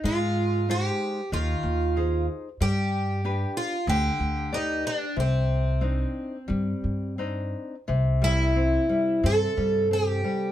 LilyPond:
<<
  \new Staff \with { instrumentName = "Twelve-string acoustic guitar" } { \time 4/4 \key c \minor \tempo 4 = 92 f'4 g'4 f'4. r8 | g'4. f'8 g'4 ees'8 d'8 | c'2. r4 | \key c \major r8 e'4. a'4 g'4 | }
  \new Staff \with { instrumentName = "Nylon-string guitar" } { \time 4/4 \key c \minor aes4 <aes ees' c''>4 ees4 <ees' aes' c''>4 | g4 <d' g' b'>4 d4 <g' b' d''>4 | c4 <c' d' ees'>4 g4 <c' d' ees'>4 | \key c \major c8 g8 c'8 g8 c'8 g8 c'8 g8 | }
  \new Staff \with { instrumentName = "Upright bass" } { \clef bass \time 4/4 \key c \minor aes,2 ees,8 ees,4. | g,2 d,8 d,4. | c,2 g,8 g,4. | \key c \major c,2 g,8 g,4. | }
>>